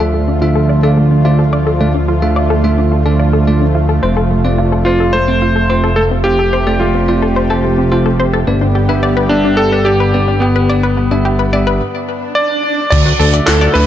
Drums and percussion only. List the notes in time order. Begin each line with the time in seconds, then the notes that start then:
12.92 kick, closed hi-hat, crash
13.20 open hi-hat
13.33 closed hi-hat
13.47 snare, clap, closed hi-hat
13.75 open hi-hat